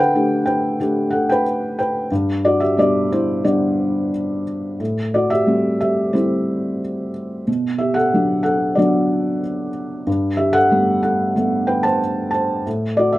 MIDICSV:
0, 0, Header, 1, 2, 480
1, 0, Start_track
1, 0, Tempo, 652884
1, 1548, Time_signature, 4, 2, 24, 8
1, 2033, Tempo, 672646
1, 5393, Tempo, 648649
1, 9619, End_track
2, 0, Start_track
2, 0, Title_t, "Felt piano"
2, 0, Program_c, 0, 0
2, 0, Control_c, 0, 64, 127
2, 0, Note_on_c, 0, 50, 54
2, 0, Note_on_c, 0, 69, 57
2, 0, Note_on_c, 0, 71, 57
2, 0, Note_on_c, 0, 78, 75
2, 0, Note_on_c, 0, 79, 88
2, 112, Note_on_c, 0, 57, 35
2, 114, Note_on_c, 0, 62, 33
2, 117, Note_on_c, 0, 67, 42
2, 316, Note_off_c, 0, 79, 0
2, 324, Note_off_c, 0, 71, 0
2, 335, Note_on_c, 0, 79, 64
2, 348, Note_on_c, 0, 71, 45
2, 565, Note_off_c, 0, 79, 0
2, 572, Note_off_c, 0, 71, 0
2, 576, Note_off_c, 0, 57, 0
2, 577, Note_off_c, 0, 62, 0
2, 579, Note_off_c, 0, 67, 0
2, 587, Note_on_c, 0, 57, 39
2, 593, Note_on_c, 0, 62, 36
2, 594, Note_on_c, 0, 67, 43
2, 813, Note_off_c, 0, 78, 0
2, 813, Note_on_c, 0, 78, 61
2, 827, Note_off_c, 0, 69, 0
2, 827, Note_on_c, 0, 69, 47
2, 939, Note_off_c, 0, 69, 0
2, 944, Note_off_c, 0, 78, 0
2, 952, Note_on_c, 0, 79, 72
2, 970, Note_on_c, 0, 71, 61
2, 1051, Note_off_c, 0, 57, 0
2, 1054, Note_off_c, 0, 62, 0
2, 1055, Note_off_c, 0, 67, 0
2, 1292, Note_off_c, 0, 71, 0
2, 1302, Note_off_c, 0, 79, 0
2, 1313, Note_on_c, 0, 79, 59
2, 1325, Note_on_c, 0, 71, 47
2, 1517, Note_off_c, 0, 50, 0
2, 1535, Note_off_c, 0, 79, 0
2, 1541, Note_off_c, 0, 71, 0
2, 1556, Note_on_c, 0, 43, 49
2, 1557, Control_c, 0, 64, 0
2, 1672, Control_c, 0, 64, 127
2, 1799, Note_on_c, 0, 74, 67
2, 1805, Note_on_c, 0, 66, 51
2, 1912, Note_off_c, 0, 66, 0
2, 1913, Note_on_c, 0, 76, 65
2, 1918, Note_on_c, 0, 67, 51
2, 1920, Note_off_c, 0, 74, 0
2, 2026, Note_off_c, 0, 76, 0
2, 2029, Note_off_c, 0, 67, 0
2, 2037, Note_on_c, 0, 55, 32
2, 2038, Note_on_c, 0, 47, 31
2, 2044, Note_on_c, 0, 62, 38
2, 2050, Note_on_c, 0, 74, 71
2, 2056, Note_on_c, 0, 67, 52
2, 2266, Note_off_c, 0, 67, 0
2, 2286, Note_off_c, 0, 74, 0
2, 2288, Note_on_c, 0, 64, 42
2, 2289, Note_on_c, 0, 72, 59
2, 2498, Note_off_c, 0, 47, 0
2, 2498, Note_off_c, 0, 55, 0
2, 2501, Note_off_c, 0, 62, 0
2, 2502, Note_off_c, 0, 64, 0
2, 2503, Note_off_c, 0, 72, 0
2, 2516, Note_on_c, 0, 67, 43
2, 2518, Note_on_c, 0, 55, 36
2, 2518, Note_on_c, 0, 74, 53
2, 2521, Note_on_c, 0, 59, 33
2, 2522, Note_on_c, 0, 62, 43
2, 2986, Note_off_c, 0, 55, 0
2, 2988, Note_off_c, 0, 59, 0
2, 2989, Note_off_c, 0, 62, 0
2, 3217, Note_off_c, 0, 67, 0
2, 3218, Note_off_c, 0, 74, 0
2, 3461, Note_off_c, 0, 43, 0
2, 3485, Note_on_c, 0, 45, 48
2, 3495, Control_c, 0, 64, 0
2, 3599, Control_c, 0, 64, 127
2, 3729, Note_on_c, 0, 74, 64
2, 3737, Note_on_c, 0, 66, 50
2, 3839, Note_off_c, 0, 74, 0
2, 3843, Note_off_c, 0, 66, 0
2, 3844, Note_on_c, 0, 76, 80
2, 3857, Note_on_c, 0, 67, 51
2, 3959, Note_on_c, 0, 55, 34
2, 3966, Note_on_c, 0, 57, 29
2, 3968, Note_on_c, 0, 60, 37
2, 4178, Note_off_c, 0, 76, 0
2, 4185, Note_off_c, 0, 67, 0
2, 4202, Note_on_c, 0, 76, 70
2, 4203, Note_on_c, 0, 67, 51
2, 4425, Note_off_c, 0, 55, 0
2, 4427, Note_off_c, 0, 67, 0
2, 4431, Note_off_c, 0, 57, 0
2, 4432, Note_off_c, 0, 60, 0
2, 4434, Note_on_c, 0, 72, 52
2, 4436, Note_on_c, 0, 55, 37
2, 4441, Note_on_c, 0, 57, 33
2, 4446, Note_on_c, 0, 64, 39
2, 4447, Note_on_c, 0, 60, 40
2, 4451, Note_off_c, 0, 76, 0
2, 4904, Note_off_c, 0, 55, 0
2, 4907, Note_off_c, 0, 57, 0
2, 4910, Note_off_c, 0, 60, 0
2, 5126, Note_off_c, 0, 72, 0
2, 5132, Note_off_c, 0, 64, 0
2, 5366, Note_off_c, 0, 45, 0
2, 5393, Note_on_c, 0, 47, 51
2, 5406, Control_c, 0, 64, 0
2, 5522, Control_c, 0, 64, 127
2, 5623, Note_on_c, 0, 76, 64
2, 5636, Note_on_c, 0, 67, 52
2, 5739, Note_on_c, 0, 78, 74
2, 5740, Note_off_c, 0, 76, 0
2, 5747, Note_off_c, 0, 67, 0
2, 5752, Note_on_c, 0, 69, 58
2, 5885, Note_on_c, 0, 54, 36
2, 5890, Note_on_c, 0, 62, 38
2, 5891, Note_on_c, 0, 59, 35
2, 6080, Note_off_c, 0, 78, 0
2, 6087, Note_off_c, 0, 69, 0
2, 6100, Note_on_c, 0, 78, 69
2, 6106, Note_on_c, 0, 69, 56
2, 6333, Note_off_c, 0, 69, 0
2, 6339, Note_on_c, 0, 74, 51
2, 6345, Note_off_c, 0, 54, 0
2, 6348, Note_off_c, 0, 59, 0
2, 6348, Note_off_c, 0, 62, 0
2, 6350, Note_on_c, 0, 66, 43
2, 6355, Note_off_c, 0, 78, 0
2, 6356, Note_on_c, 0, 54, 38
2, 6361, Note_on_c, 0, 59, 37
2, 6366, Note_on_c, 0, 62, 44
2, 6822, Note_off_c, 0, 54, 0
2, 6824, Note_off_c, 0, 59, 0
2, 6827, Note_off_c, 0, 62, 0
2, 7038, Note_off_c, 0, 74, 0
2, 7043, Note_off_c, 0, 66, 0
2, 7285, Note_off_c, 0, 47, 0
2, 7313, Note_on_c, 0, 43, 54
2, 7325, Control_c, 0, 64, 0
2, 7474, Control_c, 0, 64, 127
2, 7536, Note_on_c, 0, 76, 69
2, 7544, Note_on_c, 0, 67, 58
2, 7654, Note_on_c, 0, 69, 61
2, 7654, Note_on_c, 0, 78, 92
2, 7660, Note_off_c, 0, 67, 0
2, 7668, Note_off_c, 0, 76, 0
2, 7789, Note_on_c, 0, 57, 34
2, 7790, Note_on_c, 0, 55, 38
2, 7796, Note_on_c, 0, 59, 41
2, 7994, Note_off_c, 0, 78, 0
2, 7995, Note_off_c, 0, 69, 0
2, 8021, Note_on_c, 0, 69, 50
2, 8024, Note_on_c, 0, 78, 62
2, 8248, Note_off_c, 0, 69, 0
2, 8249, Note_off_c, 0, 78, 0
2, 8253, Note_off_c, 0, 57, 0
2, 8254, Note_off_c, 0, 55, 0
2, 8257, Note_off_c, 0, 59, 0
2, 8268, Note_on_c, 0, 55, 38
2, 8272, Note_on_c, 0, 57, 40
2, 8274, Note_on_c, 0, 59, 48
2, 8498, Note_on_c, 0, 79, 63
2, 8502, Note_on_c, 0, 71, 49
2, 8615, Note_off_c, 0, 79, 0
2, 8617, Note_off_c, 0, 71, 0
2, 8617, Note_on_c, 0, 81, 75
2, 8627, Note_on_c, 0, 72, 61
2, 8734, Note_off_c, 0, 55, 0
2, 8736, Note_off_c, 0, 57, 0
2, 8737, Note_off_c, 0, 59, 0
2, 8959, Note_off_c, 0, 81, 0
2, 8963, Note_off_c, 0, 72, 0
2, 8970, Note_on_c, 0, 81, 63
2, 8997, Note_on_c, 0, 72, 49
2, 9200, Note_off_c, 0, 43, 0
2, 9202, Note_off_c, 0, 81, 0
2, 9217, Note_off_c, 0, 72, 0
2, 9230, Note_on_c, 0, 45, 54
2, 9239, Control_c, 0, 64, 0
2, 9364, Control_c, 0, 64, 127
2, 9459, Note_on_c, 0, 74, 73
2, 9475, Note_on_c, 0, 66, 53
2, 9575, Note_on_c, 0, 76, 68
2, 9577, Note_off_c, 0, 74, 0
2, 9586, Note_off_c, 0, 66, 0
2, 9589, Note_on_c, 0, 67, 52
2, 9619, Note_off_c, 0, 45, 0
2, 9619, Note_off_c, 0, 67, 0
2, 9619, Note_off_c, 0, 76, 0
2, 9619, End_track
0, 0, End_of_file